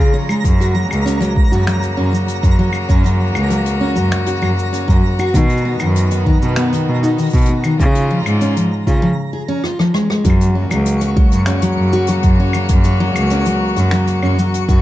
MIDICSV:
0, 0, Header, 1, 6, 480
1, 0, Start_track
1, 0, Key_signature, 6, "major"
1, 0, Tempo, 612245
1, 354, Time_signature, 4, 2, 24, 8
1, 11617, End_track
2, 0, Start_track
2, 0, Title_t, "Synth texture"
2, 0, Program_c, 0, 99
2, 0, Note_on_c, 0, 82, 78
2, 7073, Note_off_c, 0, 82, 0
2, 8037, Note_on_c, 0, 85, 83
2, 11617, Note_off_c, 0, 85, 0
2, 11617, End_track
3, 0, Start_track
3, 0, Title_t, "Steel-string acoustic guitar"
3, 0, Program_c, 1, 25
3, 0, Note_on_c, 1, 68, 58
3, 99, Note_off_c, 1, 68, 0
3, 108, Note_on_c, 1, 73, 78
3, 219, Note_off_c, 1, 73, 0
3, 228, Note_on_c, 1, 56, 68
3, 339, Note_off_c, 1, 56, 0
3, 473, Note_on_c, 1, 66, 62
3, 581, Note_off_c, 1, 66, 0
3, 586, Note_on_c, 1, 54, 75
3, 658, Note_off_c, 1, 54, 0
3, 829, Note_on_c, 1, 61, 75
3, 939, Note_off_c, 1, 61, 0
3, 944, Note_on_c, 1, 54, 72
3, 1063, Note_off_c, 1, 54, 0
3, 1191, Note_on_c, 1, 66, 64
3, 1300, Note_off_c, 1, 66, 0
3, 1308, Note_on_c, 1, 54, 74
3, 1380, Note_off_c, 1, 54, 0
3, 1546, Note_on_c, 1, 61, 69
3, 1658, Note_off_c, 1, 61, 0
3, 1667, Note_on_c, 1, 54, 67
3, 1784, Note_off_c, 1, 54, 0
3, 1906, Note_on_c, 1, 66, 60
3, 2018, Note_off_c, 1, 66, 0
3, 2030, Note_on_c, 1, 54, 77
3, 2100, Note_off_c, 1, 54, 0
3, 2264, Note_on_c, 1, 61, 77
3, 2377, Note_off_c, 1, 61, 0
3, 2385, Note_on_c, 1, 54, 66
3, 2503, Note_off_c, 1, 54, 0
3, 2625, Note_on_c, 1, 66, 67
3, 2738, Note_off_c, 1, 66, 0
3, 2744, Note_on_c, 1, 54, 73
3, 2817, Note_off_c, 1, 54, 0
3, 2986, Note_on_c, 1, 61, 74
3, 3098, Note_off_c, 1, 61, 0
3, 3101, Note_on_c, 1, 54, 69
3, 3222, Note_off_c, 1, 54, 0
3, 3343, Note_on_c, 1, 66, 72
3, 3457, Note_off_c, 1, 66, 0
3, 3464, Note_on_c, 1, 54, 68
3, 3537, Note_off_c, 1, 54, 0
3, 3706, Note_on_c, 1, 61, 74
3, 3818, Note_off_c, 1, 61, 0
3, 3824, Note_on_c, 1, 54, 65
3, 3943, Note_off_c, 1, 54, 0
3, 4070, Note_on_c, 1, 66, 74
3, 4180, Note_off_c, 1, 66, 0
3, 4192, Note_on_c, 1, 51, 73
3, 4261, Note_off_c, 1, 51, 0
3, 4431, Note_on_c, 1, 59, 74
3, 4540, Note_off_c, 1, 59, 0
3, 4552, Note_on_c, 1, 51, 75
3, 4667, Note_off_c, 1, 51, 0
3, 4795, Note_on_c, 1, 63, 64
3, 4902, Note_off_c, 1, 63, 0
3, 4913, Note_on_c, 1, 51, 76
3, 4982, Note_off_c, 1, 51, 0
3, 5149, Note_on_c, 1, 59, 76
3, 5259, Note_off_c, 1, 59, 0
3, 5273, Note_on_c, 1, 51, 71
3, 5387, Note_off_c, 1, 51, 0
3, 5511, Note_on_c, 1, 63, 73
3, 5620, Note_off_c, 1, 63, 0
3, 5631, Note_on_c, 1, 51, 77
3, 5701, Note_off_c, 1, 51, 0
3, 5873, Note_on_c, 1, 59, 79
3, 5981, Note_off_c, 1, 59, 0
3, 5995, Note_on_c, 1, 51, 77
3, 6109, Note_off_c, 1, 51, 0
3, 6239, Note_on_c, 1, 65, 71
3, 6344, Note_off_c, 1, 65, 0
3, 6356, Note_on_c, 1, 53, 73
3, 6423, Note_off_c, 1, 53, 0
3, 6596, Note_on_c, 1, 61, 76
3, 6703, Note_off_c, 1, 61, 0
3, 6716, Note_on_c, 1, 53, 73
3, 6829, Note_off_c, 1, 53, 0
3, 6954, Note_on_c, 1, 65, 69
3, 7062, Note_off_c, 1, 65, 0
3, 7072, Note_on_c, 1, 53, 82
3, 7141, Note_off_c, 1, 53, 0
3, 7315, Note_on_c, 1, 68, 68
3, 7383, Note_off_c, 1, 68, 0
3, 7436, Note_on_c, 1, 61, 96
3, 7543, Note_off_c, 1, 61, 0
3, 7555, Note_on_c, 1, 65, 80
3, 7662, Note_off_c, 1, 65, 0
3, 7677, Note_on_c, 1, 53, 85
3, 7783, Note_off_c, 1, 53, 0
3, 7795, Note_on_c, 1, 56, 77
3, 7903, Note_off_c, 1, 56, 0
3, 7917, Note_on_c, 1, 56, 71
3, 8030, Note_off_c, 1, 56, 0
3, 8035, Note_on_c, 1, 54, 100
3, 8263, Note_off_c, 1, 54, 0
3, 8273, Note_on_c, 1, 61, 69
3, 8382, Note_off_c, 1, 61, 0
3, 8397, Note_on_c, 1, 54, 70
3, 8623, Note_off_c, 1, 54, 0
3, 8636, Note_on_c, 1, 66, 98
3, 8743, Note_off_c, 1, 66, 0
3, 8754, Note_on_c, 1, 54, 99
3, 8982, Note_off_c, 1, 54, 0
3, 8994, Note_on_c, 1, 61, 74
3, 9102, Note_off_c, 1, 61, 0
3, 9113, Note_on_c, 1, 54, 77
3, 9342, Note_off_c, 1, 54, 0
3, 9354, Note_on_c, 1, 66, 104
3, 9462, Note_off_c, 1, 66, 0
3, 9477, Note_on_c, 1, 54, 96
3, 9704, Note_off_c, 1, 54, 0
3, 9720, Note_on_c, 1, 61, 77
3, 9825, Note_off_c, 1, 61, 0
3, 9835, Note_on_c, 1, 54, 76
3, 10063, Note_off_c, 1, 54, 0
3, 10073, Note_on_c, 1, 66, 100
3, 10181, Note_off_c, 1, 66, 0
3, 10194, Note_on_c, 1, 54, 103
3, 10422, Note_off_c, 1, 54, 0
3, 10438, Note_on_c, 1, 61, 84
3, 10544, Note_off_c, 1, 61, 0
3, 10554, Note_on_c, 1, 54, 75
3, 10782, Note_off_c, 1, 54, 0
3, 10793, Note_on_c, 1, 66, 93
3, 10902, Note_off_c, 1, 66, 0
3, 10913, Note_on_c, 1, 54, 94
3, 11141, Note_off_c, 1, 54, 0
3, 11155, Note_on_c, 1, 61, 69
3, 11262, Note_off_c, 1, 61, 0
3, 11278, Note_on_c, 1, 54, 77
3, 11504, Note_off_c, 1, 54, 0
3, 11515, Note_on_c, 1, 66, 88
3, 11617, Note_off_c, 1, 66, 0
3, 11617, End_track
4, 0, Start_track
4, 0, Title_t, "String quartet"
4, 0, Program_c, 2, 48
4, 0, Note_on_c, 2, 49, 71
4, 0, Note_on_c, 2, 56, 64
4, 0, Note_on_c, 2, 65, 83
4, 337, Note_off_c, 2, 65, 0
4, 338, Note_off_c, 2, 56, 0
4, 353, Note_on_c, 2, 58, 66
4, 354, Note_on_c, 2, 66, 83
4, 4162, Note_off_c, 2, 58, 0
4, 4167, Note_off_c, 2, 49, 0
4, 4190, Note_on_c, 2, 51, 79
4, 4190, Note_on_c, 2, 59, 71
4, 6082, Note_off_c, 2, 66, 0
4, 6093, Note_off_c, 2, 51, 0
4, 6093, Note_off_c, 2, 59, 0
4, 6101, Note_on_c, 2, 49, 79
4, 6101, Note_on_c, 2, 56, 69
4, 6105, Note_on_c, 2, 65, 89
4, 7058, Note_off_c, 2, 49, 0
4, 7058, Note_off_c, 2, 56, 0
4, 7060, Note_off_c, 2, 65, 0
4, 8032, Note_on_c, 2, 66, 90
4, 8035, Note_on_c, 2, 49, 80
4, 8036, Note_on_c, 2, 58, 71
4, 11617, Note_off_c, 2, 49, 0
4, 11617, Note_off_c, 2, 58, 0
4, 11617, Note_off_c, 2, 66, 0
4, 11617, End_track
5, 0, Start_track
5, 0, Title_t, "Cello"
5, 0, Program_c, 3, 42
5, 352, Note_on_c, 3, 42, 95
5, 646, Note_off_c, 3, 42, 0
5, 706, Note_on_c, 3, 37, 92
5, 1003, Note_off_c, 3, 37, 0
5, 1184, Note_on_c, 3, 42, 82
5, 1267, Note_off_c, 3, 42, 0
5, 1549, Note_on_c, 3, 42, 74
5, 1630, Note_off_c, 3, 42, 0
5, 1909, Note_on_c, 3, 42, 81
5, 1990, Note_off_c, 3, 42, 0
5, 2268, Note_on_c, 3, 42, 92
5, 2564, Note_off_c, 3, 42, 0
5, 2630, Note_on_c, 3, 37, 98
5, 2925, Note_off_c, 3, 37, 0
5, 3111, Note_on_c, 3, 42, 80
5, 3190, Note_off_c, 3, 42, 0
5, 3476, Note_on_c, 3, 42, 75
5, 3553, Note_off_c, 3, 42, 0
5, 3831, Note_on_c, 3, 42, 87
5, 3911, Note_off_c, 3, 42, 0
5, 4191, Note_on_c, 3, 47, 98
5, 4486, Note_off_c, 3, 47, 0
5, 4556, Note_on_c, 3, 42, 92
5, 4848, Note_off_c, 3, 42, 0
5, 5037, Note_on_c, 3, 47, 85
5, 5113, Note_off_c, 3, 47, 0
5, 5398, Note_on_c, 3, 47, 78
5, 5474, Note_off_c, 3, 47, 0
5, 5753, Note_on_c, 3, 47, 85
5, 5831, Note_off_c, 3, 47, 0
5, 6114, Note_on_c, 3, 49, 99
5, 6407, Note_off_c, 3, 49, 0
5, 6474, Note_on_c, 3, 44, 94
5, 6767, Note_off_c, 3, 44, 0
5, 6954, Note_on_c, 3, 49, 85
5, 7074, Note_off_c, 3, 49, 0
5, 8037, Note_on_c, 3, 42, 92
5, 8328, Note_off_c, 3, 42, 0
5, 8394, Note_on_c, 3, 37, 99
5, 8687, Note_off_c, 3, 37, 0
5, 8877, Note_on_c, 3, 42, 84
5, 8954, Note_off_c, 3, 42, 0
5, 9239, Note_on_c, 3, 42, 76
5, 9314, Note_off_c, 3, 42, 0
5, 9595, Note_on_c, 3, 42, 88
5, 9673, Note_off_c, 3, 42, 0
5, 9955, Note_on_c, 3, 42, 94
5, 10248, Note_off_c, 3, 42, 0
5, 10314, Note_on_c, 3, 37, 93
5, 10607, Note_off_c, 3, 37, 0
5, 10797, Note_on_c, 3, 42, 93
5, 10874, Note_off_c, 3, 42, 0
5, 11155, Note_on_c, 3, 42, 74
5, 11233, Note_off_c, 3, 42, 0
5, 11517, Note_on_c, 3, 42, 88
5, 11594, Note_off_c, 3, 42, 0
5, 11617, End_track
6, 0, Start_track
6, 0, Title_t, "Drums"
6, 7, Note_on_c, 9, 69, 46
6, 86, Note_off_c, 9, 69, 0
6, 229, Note_on_c, 9, 75, 69
6, 239, Note_on_c, 9, 69, 76
6, 308, Note_off_c, 9, 75, 0
6, 317, Note_off_c, 9, 69, 0
6, 349, Note_on_c, 9, 36, 106
6, 349, Note_on_c, 9, 42, 68
6, 363, Note_on_c, 9, 69, 62
6, 428, Note_off_c, 9, 36, 0
6, 428, Note_off_c, 9, 42, 0
6, 442, Note_off_c, 9, 69, 0
6, 476, Note_on_c, 9, 42, 50
6, 484, Note_on_c, 9, 69, 51
6, 554, Note_off_c, 9, 42, 0
6, 562, Note_off_c, 9, 69, 0
6, 712, Note_on_c, 9, 75, 69
6, 723, Note_on_c, 9, 69, 78
6, 791, Note_off_c, 9, 75, 0
6, 802, Note_off_c, 9, 69, 0
6, 840, Note_on_c, 9, 42, 67
6, 840, Note_on_c, 9, 69, 68
6, 918, Note_off_c, 9, 42, 0
6, 918, Note_off_c, 9, 69, 0
6, 952, Note_on_c, 9, 42, 55
6, 963, Note_on_c, 9, 69, 48
6, 1030, Note_off_c, 9, 42, 0
6, 1042, Note_off_c, 9, 69, 0
6, 1068, Note_on_c, 9, 36, 104
6, 1147, Note_off_c, 9, 36, 0
6, 1196, Note_on_c, 9, 69, 71
6, 1275, Note_off_c, 9, 69, 0
6, 1312, Note_on_c, 9, 26, 70
6, 1315, Note_on_c, 9, 42, 70
6, 1321, Note_on_c, 9, 69, 60
6, 1390, Note_off_c, 9, 26, 0
6, 1393, Note_off_c, 9, 42, 0
6, 1399, Note_off_c, 9, 69, 0
6, 1429, Note_on_c, 9, 42, 51
6, 1436, Note_on_c, 9, 69, 52
6, 1508, Note_off_c, 9, 42, 0
6, 1514, Note_off_c, 9, 69, 0
6, 1682, Note_on_c, 9, 69, 69
6, 1761, Note_off_c, 9, 69, 0
6, 1787, Note_on_c, 9, 42, 74
6, 1799, Note_on_c, 9, 69, 62
6, 1866, Note_off_c, 9, 42, 0
6, 1878, Note_off_c, 9, 69, 0
6, 1908, Note_on_c, 9, 36, 109
6, 1912, Note_on_c, 9, 42, 59
6, 1918, Note_on_c, 9, 69, 48
6, 1986, Note_off_c, 9, 36, 0
6, 1990, Note_off_c, 9, 42, 0
6, 1996, Note_off_c, 9, 69, 0
6, 2138, Note_on_c, 9, 75, 74
6, 2151, Note_on_c, 9, 69, 59
6, 2216, Note_off_c, 9, 75, 0
6, 2230, Note_off_c, 9, 69, 0
6, 2267, Note_on_c, 9, 36, 103
6, 2267, Note_on_c, 9, 42, 64
6, 2273, Note_on_c, 9, 69, 65
6, 2345, Note_off_c, 9, 42, 0
6, 2346, Note_off_c, 9, 36, 0
6, 2351, Note_off_c, 9, 69, 0
6, 2396, Note_on_c, 9, 42, 50
6, 2397, Note_on_c, 9, 69, 46
6, 2474, Note_off_c, 9, 42, 0
6, 2475, Note_off_c, 9, 69, 0
6, 2627, Note_on_c, 9, 75, 83
6, 2637, Note_on_c, 9, 69, 69
6, 2706, Note_off_c, 9, 75, 0
6, 2715, Note_off_c, 9, 69, 0
6, 2746, Note_on_c, 9, 42, 69
6, 2755, Note_on_c, 9, 69, 68
6, 2825, Note_off_c, 9, 42, 0
6, 2834, Note_off_c, 9, 69, 0
6, 2867, Note_on_c, 9, 42, 64
6, 2878, Note_on_c, 9, 69, 51
6, 2946, Note_off_c, 9, 42, 0
6, 2957, Note_off_c, 9, 69, 0
6, 3108, Note_on_c, 9, 69, 72
6, 3186, Note_off_c, 9, 69, 0
6, 3224, Note_on_c, 9, 42, 70
6, 3230, Note_on_c, 9, 26, 71
6, 3232, Note_on_c, 9, 69, 55
6, 3302, Note_off_c, 9, 42, 0
6, 3308, Note_off_c, 9, 26, 0
6, 3311, Note_off_c, 9, 69, 0
6, 3342, Note_on_c, 9, 42, 64
6, 3355, Note_on_c, 9, 69, 47
6, 3421, Note_off_c, 9, 42, 0
6, 3434, Note_off_c, 9, 69, 0
6, 3470, Note_on_c, 9, 75, 60
6, 3548, Note_off_c, 9, 75, 0
6, 3601, Note_on_c, 9, 69, 70
6, 3679, Note_off_c, 9, 69, 0
6, 3712, Note_on_c, 9, 42, 76
6, 3718, Note_on_c, 9, 69, 61
6, 3790, Note_off_c, 9, 42, 0
6, 3797, Note_off_c, 9, 69, 0
6, 3828, Note_on_c, 9, 36, 103
6, 3839, Note_on_c, 9, 42, 54
6, 3842, Note_on_c, 9, 69, 43
6, 3906, Note_off_c, 9, 36, 0
6, 3917, Note_off_c, 9, 42, 0
6, 3920, Note_off_c, 9, 69, 0
6, 4070, Note_on_c, 9, 69, 74
6, 4074, Note_on_c, 9, 75, 67
6, 4148, Note_off_c, 9, 69, 0
6, 4153, Note_off_c, 9, 75, 0
6, 4188, Note_on_c, 9, 36, 102
6, 4191, Note_on_c, 9, 42, 76
6, 4191, Note_on_c, 9, 69, 64
6, 4267, Note_off_c, 9, 36, 0
6, 4269, Note_off_c, 9, 69, 0
6, 4270, Note_off_c, 9, 42, 0
6, 4308, Note_on_c, 9, 42, 54
6, 4370, Note_on_c, 9, 69, 48
6, 4386, Note_off_c, 9, 42, 0
6, 4449, Note_off_c, 9, 69, 0
6, 4546, Note_on_c, 9, 69, 76
6, 4546, Note_on_c, 9, 75, 78
6, 4624, Note_off_c, 9, 69, 0
6, 4625, Note_off_c, 9, 75, 0
6, 4669, Note_on_c, 9, 42, 77
6, 4680, Note_on_c, 9, 69, 63
6, 4747, Note_off_c, 9, 42, 0
6, 4759, Note_off_c, 9, 69, 0
6, 4787, Note_on_c, 9, 42, 64
6, 4791, Note_on_c, 9, 69, 51
6, 4865, Note_off_c, 9, 42, 0
6, 4870, Note_off_c, 9, 69, 0
6, 4910, Note_on_c, 9, 36, 91
6, 4988, Note_off_c, 9, 36, 0
6, 5034, Note_on_c, 9, 69, 69
6, 5113, Note_off_c, 9, 69, 0
6, 5142, Note_on_c, 9, 42, 77
6, 5145, Note_on_c, 9, 26, 69
6, 5154, Note_on_c, 9, 69, 55
6, 5221, Note_off_c, 9, 42, 0
6, 5224, Note_off_c, 9, 26, 0
6, 5232, Note_off_c, 9, 69, 0
6, 5277, Note_on_c, 9, 69, 47
6, 5279, Note_on_c, 9, 42, 63
6, 5355, Note_off_c, 9, 69, 0
6, 5357, Note_off_c, 9, 42, 0
6, 5517, Note_on_c, 9, 69, 78
6, 5595, Note_off_c, 9, 69, 0
6, 5629, Note_on_c, 9, 42, 34
6, 5639, Note_on_c, 9, 69, 61
6, 5659, Note_off_c, 9, 42, 0
6, 5659, Note_on_c, 9, 42, 38
6, 5688, Note_off_c, 9, 42, 0
6, 5688, Note_on_c, 9, 42, 43
6, 5717, Note_off_c, 9, 69, 0
6, 5720, Note_off_c, 9, 42, 0
6, 5720, Note_on_c, 9, 42, 48
6, 5747, Note_off_c, 9, 42, 0
6, 5747, Note_on_c, 9, 42, 51
6, 5751, Note_on_c, 9, 36, 101
6, 5754, Note_on_c, 9, 69, 45
6, 5775, Note_off_c, 9, 42, 0
6, 5775, Note_on_c, 9, 42, 57
6, 5809, Note_off_c, 9, 42, 0
6, 5809, Note_on_c, 9, 42, 58
6, 5829, Note_off_c, 9, 36, 0
6, 5832, Note_off_c, 9, 69, 0
6, 5843, Note_off_c, 9, 42, 0
6, 5843, Note_on_c, 9, 42, 65
6, 5921, Note_off_c, 9, 42, 0
6, 5987, Note_on_c, 9, 75, 66
6, 5989, Note_on_c, 9, 69, 68
6, 6066, Note_off_c, 9, 75, 0
6, 6068, Note_off_c, 9, 69, 0
6, 6112, Note_on_c, 9, 36, 112
6, 6115, Note_on_c, 9, 42, 66
6, 6120, Note_on_c, 9, 69, 57
6, 6191, Note_off_c, 9, 36, 0
6, 6193, Note_off_c, 9, 42, 0
6, 6198, Note_off_c, 9, 69, 0
6, 6231, Note_on_c, 9, 42, 63
6, 6309, Note_off_c, 9, 42, 0
6, 6474, Note_on_c, 9, 42, 49
6, 6476, Note_on_c, 9, 75, 78
6, 6483, Note_on_c, 9, 69, 69
6, 6553, Note_off_c, 9, 42, 0
6, 6555, Note_off_c, 9, 75, 0
6, 6562, Note_off_c, 9, 69, 0
6, 6590, Note_on_c, 9, 42, 70
6, 6595, Note_on_c, 9, 69, 70
6, 6668, Note_off_c, 9, 42, 0
6, 6673, Note_off_c, 9, 69, 0
6, 6715, Note_on_c, 9, 42, 61
6, 6718, Note_on_c, 9, 69, 53
6, 6793, Note_off_c, 9, 42, 0
6, 6796, Note_off_c, 9, 69, 0
6, 6953, Note_on_c, 9, 42, 42
6, 6954, Note_on_c, 9, 36, 52
6, 6960, Note_on_c, 9, 69, 66
6, 7031, Note_off_c, 9, 42, 0
6, 7032, Note_off_c, 9, 36, 0
6, 7038, Note_off_c, 9, 69, 0
6, 7555, Note_on_c, 9, 37, 57
6, 7634, Note_off_c, 9, 37, 0
6, 7678, Note_on_c, 9, 37, 54
6, 7756, Note_off_c, 9, 37, 0
6, 7795, Note_on_c, 9, 37, 83
6, 7873, Note_off_c, 9, 37, 0
6, 7919, Note_on_c, 9, 37, 66
6, 7998, Note_off_c, 9, 37, 0
6, 8031, Note_on_c, 9, 42, 76
6, 8035, Note_on_c, 9, 36, 119
6, 8039, Note_on_c, 9, 69, 68
6, 8075, Note_on_c, 9, 75, 58
6, 8110, Note_off_c, 9, 42, 0
6, 8113, Note_off_c, 9, 36, 0
6, 8117, Note_off_c, 9, 69, 0
6, 8153, Note_off_c, 9, 75, 0
6, 8159, Note_on_c, 9, 42, 59
6, 8162, Note_on_c, 9, 69, 50
6, 8238, Note_off_c, 9, 42, 0
6, 8241, Note_off_c, 9, 69, 0
6, 8390, Note_on_c, 9, 42, 48
6, 8398, Note_on_c, 9, 75, 75
6, 8403, Note_on_c, 9, 69, 83
6, 8469, Note_off_c, 9, 42, 0
6, 8476, Note_off_c, 9, 75, 0
6, 8481, Note_off_c, 9, 69, 0
6, 8510, Note_on_c, 9, 42, 87
6, 8524, Note_on_c, 9, 69, 69
6, 8588, Note_off_c, 9, 42, 0
6, 8603, Note_off_c, 9, 69, 0
6, 8629, Note_on_c, 9, 42, 64
6, 8633, Note_on_c, 9, 69, 51
6, 8707, Note_off_c, 9, 42, 0
6, 8711, Note_off_c, 9, 69, 0
6, 8754, Note_on_c, 9, 36, 109
6, 8832, Note_off_c, 9, 36, 0
6, 8870, Note_on_c, 9, 42, 54
6, 8881, Note_on_c, 9, 69, 83
6, 8949, Note_off_c, 9, 42, 0
6, 8959, Note_off_c, 9, 69, 0
6, 8984, Note_on_c, 9, 26, 73
6, 8988, Note_on_c, 9, 69, 70
6, 8990, Note_on_c, 9, 42, 76
6, 9063, Note_off_c, 9, 26, 0
6, 9067, Note_off_c, 9, 69, 0
6, 9068, Note_off_c, 9, 42, 0
6, 9109, Note_on_c, 9, 42, 64
6, 9109, Note_on_c, 9, 69, 55
6, 9187, Note_off_c, 9, 42, 0
6, 9187, Note_off_c, 9, 69, 0
6, 9350, Note_on_c, 9, 69, 72
6, 9429, Note_off_c, 9, 69, 0
6, 9461, Note_on_c, 9, 42, 70
6, 9471, Note_on_c, 9, 69, 68
6, 9539, Note_off_c, 9, 42, 0
6, 9549, Note_off_c, 9, 69, 0
6, 9585, Note_on_c, 9, 42, 59
6, 9593, Note_on_c, 9, 36, 110
6, 9595, Note_on_c, 9, 69, 50
6, 9664, Note_off_c, 9, 42, 0
6, 9671, Note_off_c, 9, 36, 0
6, 9673, Note_off_c, 9, 69, 0
6, 9826, Note_on_c, 9, 75, 79
6, 9832, Note_on_c, 9, 69, 76
6, 9904, Note_off_c, 9, 75, 0
6, 9911, Note_off_c, 9, 69, 0
6, 9944, Note_on_c, 9, 42, 77
6, 9948, Note_on_c, 9, 69, 74
6, 9953, Note_on_c, 9, 36, 118
6, 10023, Note_off_c, 9, 42, 0
6, 10026, Note_off_c, 9, 69, 0
6, 10031, Note_off_c, 9, 36, 0
6, 10063, Note_on_c, 9, 42, 63
6, 10073, Note_on_c, 9, 69, 51
6, 10141, Note_off_c, 9, 42, 0
6, 10152, Note_off_c, 9, 69, 0
6, 10310, Note_on_c, 9, 42, 54
6, 10315, Note_on_c, 9, 75, 82
6, 10319, Note_on_c, 9, 69, 84
6, 10388, Note_off_c, 9, 42, 0
6, 10394, Note_off_c, 9, 75, 0
6, 10397, Note_off_c, 9, 69, 0
6, 10426, Note_on_c, 9, 42, 74
6, 10434, Note_on_c, 9, 69, 73
6, 10505, Note_off_c, 9, 42, 0
6, 10513, Note_off_c, 9, 69, 0
6, 10547, Note_on_c, 9, 42, 58
6, 10557, Note_on_c, 9, 69, 59
6, 10626, Note_off_c, 9, 42, 0
6, 10635, Note_off_c, 9, 69, 0
6, 10787, Note_on_c, 9, 42, 46
6, 10803, Note_on_c, 9, 69, 77
6, 10865, Note_off_c, 9, 42, 0
6, 10881, Note_off_c, 9, 69, 0
6, 10908, Note_on_c, 9, 26, 73
6, 10912, Note_on_c, 9, 42, 77
6, 10924, Note_on_c, 9, 69, 62
6, 10986, Note_off_c, 9, 26, 0
6, 10991, Note_off_c, 9, 42, 0
6, 11003, Note_off_c, 9, 69, 0
6, 11031, Note_on_c, 9, 42, 57
6, 11037, Note_on_c, 9, 69, 47
6, 11109, Note_off_c, 9, 42, 0
6, 11115, Note_off_c, 9, 69, 0
6, 11153, Note_on_c, 9, 75, 59
6, 11231, Note_off_c, 9, 75, 0
6, 11281, Note_on_c, 9, 69, 75
6, 11360, Note_off_c, 9, 69, 0
6, 11397, Note_on_c, 9, 42, 72
6, 11406, Note_on_c, 9, 69, 66
6, 11475, Note_off_c, 9, 42, 0
6, 11485, Note_off_c, 9, 69, 0
6, 11513, Note_on_c, 9, 42, 51
6, 11514, Note_on_c, 9, 36, 114
6, 11521, Note_on_c, 9, 69, 54
6, 11591, Note_off_c, 9, 42, 0
6, 11592, Note_off_c, 9, 36, 0
6, 11600, Note_off_c, 9, 69, 0
6, 11617, End_track
0, 0, End_of_file